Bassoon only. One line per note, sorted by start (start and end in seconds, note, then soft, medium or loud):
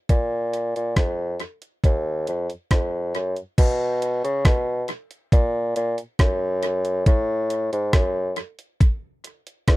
0.10 0.71 A#2 loud
0.76 0.95 A#2 medium
0.97 1.37 F2 medium
1.84 2.24 D#2 medium
2.28 2.48 F2 medium
2.71 3.11 F2 medium
3.15 3.35 F#2 medium
3.58 4.20 B2 loud
4.24 4.44 C#3 medium
4.45 4.86 B2 medium
5.33 5.73 A#2 loud
5.76 5.97 A#2 loud
6.20 7.02 F#2 loud
7.07 7.68 A2 medium
7.72 7.92 G#2 medium
7.94 8.34 F#2 medium
9.68 9.77 E2 medium